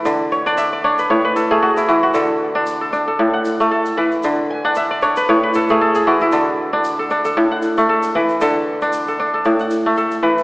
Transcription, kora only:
Already playing: A2 E3 A3 D4 A4 B4 F#5
0.05 D3
0.32 C#5
0.46 D4 D5
0.57 E5
0.73 D5
0.84 D4 C#5
0.99 B4
1.10 A2 C#5
1.25 B4
1.36 A4
1.51 A3 G#4
1.62 F#4
1.77 E4
1.88 E3 F#4
2.03 F#4
2.14 D3 A4
2.55 D4
2.81 A4
2.93 D4
3.08 A4
3.19 A2
3.33 F#5
3.60 A3
3.71 A4
3.97 E3 B4
4.24 D3
4.50 G#5
4.65 D4 F#5
4.77 E5
4.91 D5
5.02 D4 C#5
5.17 B4
5.29 A2 C#5
5.43 B4
5.55 A4
5.70 A3 G#4
5.81 A4
5.95 G#4
6.07 E3 F#4
6.21 E4
6.32 D3 A4
6.73 D4
6.99 A4
7.11 D4
7.25 A4
7.37 A2
7.51 F#5
7.78 A3
7.89 A4
8.15 E3 B4
8.41 D3 A4
8.82 D4
9.08 A4
9.20 D4
9.34 A4
9.45 A2
9.60 F#5
9.86 A3
9.97 A4
10.23 E3 B4

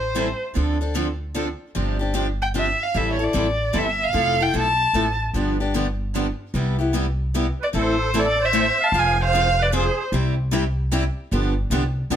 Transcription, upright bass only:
Already playing: A1
0.56 D2
1.76 G1
2.95 A1
3.34 A1
3.74 G1
4.14 F1
4.54 B1
4.93 A1
5.34 G1
6.54 C2
7.74 A1
8.92 F1
10.12 C2
11.32 G1
11.70 C2
12.10 B1

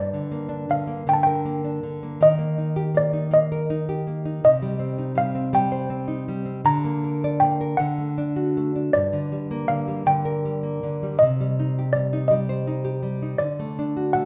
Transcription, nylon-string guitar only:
Already playing: G2
0.14 D3
0.32 A#3
0.49 D4
0.69 D3
0.87 A#3
1.07 D3
1.27 A#4
1.45 A#3
1.64 D4
1.83 D3
2.03 A#3
2.21 D#3
2.39 A#3
2.58 D#4
2.76 G4
2.94 A#3
3.13 D#4
3.31 A#3
3.52 A#4
3.70 D#4
3.89 G4
4.07 A#3
4.25 D#4
4.44 C3
4.62 G3
4.79 C4
4.98 D#4
5.15 G3
5.35 C4
5.53 G3
5.72 C5
5.90 C4
6.08 D#4
6.28 G3
6.46 C4
6.65 D3
6.85 A#3
7.04 A#4
7.24 D5
7.42 A#3
7.61 A#4
7.79 D3
7.98 A3
8.18 D4
8.36 F#4
8.57 A3
8.76 D4
8.94 G2
9.13 D3
9.32 G3
9.51 A#3
9.69 D3
9.88 G3
10.06 D3
10.25 A#4
10.45 G3
10.63 A#3
10.83 D3
11.03 G3
11.22 C3
11.41 G3
11.59 D#4
11.79 G4
11.95 G3
12.13 D#4
12.31 G3
12.49 C5
12.67 D#4
12.85 G4
13.03 G3
13.22 D#4
13.39 D3
13.60 A3
13.79 D4
13.97 F#4
14.15 A3

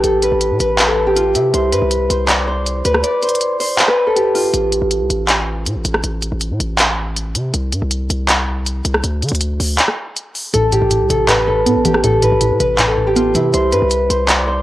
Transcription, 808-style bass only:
0.04 A1
0.32 A1
0.51 A2
0.60 A1
1.35 C3
1.54 C2
1.72 G2
1.82 C2
2.10 C2
2.85 D2
4.54 A1
4.82 A1
5.01 C2
5.10 A1
5.66 A2
5.76 A1
5.85 A1
6.04 A1
6.32 A1
6.51 A2
6.60 A1
7.35 C3
7.54 C2
7.73 G2
7.82 C2
8.10 C2
8.85 C2
9.04 D2
9.22 D3
9.32 D2
9.60 D2
10.54 A1
10.82 A1
11.00 C2
11.10 A1
11.66 A2
11.76 A1
11.85 A1
12.04 A1
12.32 A1
12.51 A2
12.60 A1
13.35 C3
13.54 C2
13.72 G2
13.82 C2
14.10 C2

